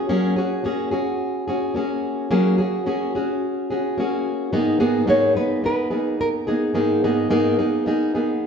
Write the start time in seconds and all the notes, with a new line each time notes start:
0.09 F#3 A#3 C#4 F#4 G#4
0.36 C#4 F#4 G#4
0.64 A#3 C#4 F#4 G#4
0.91 C#4 F#4 G#4
1.48 C#4 F#4 G#4
1.75 A#3 C#4 F#4 G#4
2.31 F#3 A#3 C#4 F#4 G#4
2.58 C#4 F#4 G#4
2.86 A#3 C#4 F#4 G#4
3.15 C#4 F#4 G#4
3.70 C#4 F#4 G#4
3.98 A#3 C#4 F#4 G#4
4.52 G#2 D#3 A#3 B3 D#4 G#4
4.80 G#2 D#3 A#3 B3 D#4 G#4
5.07 G#2 D#3 A#3 B3 D#4 G#4 C#5
5.35 A#3 B3 D#4 G#4 B4
5.62 A#3 B3 D#4 G#4 B4
5.91 A#3 B3 D#4 G#4
6.21 A#4
6.47 A#3 B3 D#4 G#4
6.73 G#2 D#3 A#3 B3 D#4 G#4
7.04 G#2 D#3 A#3 B3 D#4 G#4
7.30 G#2 D#3 A#3 B3 D#4 G#4
7.59 A#3 B3 D#4 G#4
7.86 A#3 B3 D#4 G#4
8.15 A#3 B3 D#4 G#4